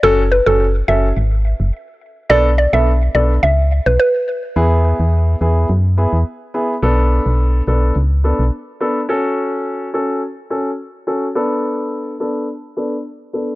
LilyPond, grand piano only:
\new Staff \with { instrumentName = "Grand piano" } { \time 4/4 \key b \dorian \tempo 4 = 106 <cis' fis' a'>16 r8 <cis' fis' a'>16 r8 <cis' fis' a'>16 r2 r16 | <b d' a'>16 r8 <b d' a'>16 r8 <b d' a'>16 r2 r16 | <b e' gis'>4. <b e' gis'>8 r8 <b e' gis'>16 r8. <b e' gis'>16 r16 | <b d' a'>4. <b d' a'>8 r8 <b d' a'>16 r8. <b d' a'>16 r16 |
<cis' fis' a'>4. <cis' fis' a'>8 r8 <cis' fis' a'>16 r8. <cis' fis' a'>16 r16 | <b d' a'>4. <b d' a'>8 r8 <b d' a'>16 r8. <b d' a'>16 r16 | }